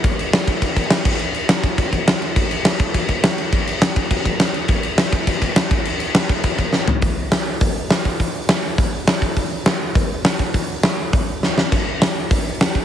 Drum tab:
CC |xxxxxxxx|xxxxxxxx|xxxxxxxx|xxxxxxxx|
HH |--------|--------|--------|--------|
SD |--o---o-|--o---o-|--o---o-|--o---o-|
FT |--------|--------|--------|--------|
BD |o--ooo-o|---ooo--|o--ooo--|o--ooo--|

CC |xxxxxxxx|xxxxxx--|--------|--------|
HH |--------|--------|o-o-o-o-|o-o-o-o-|
SD |--o---o-|--o---o-|--o---o-|--o---o-|
FT |--------|-------o|--------|--------|
BD |o--ooo-o|---ooo--|o---o--o|o---o--o|

CC |--------|--------|x-------|
HH |o-o-o-o-|o-o-o---|--o-o-o-|
SD |--o---o-|--o---oo|--o---o-|
FT |--------|--------|--------|
BD |o---o--o|o---o---|o---o--o|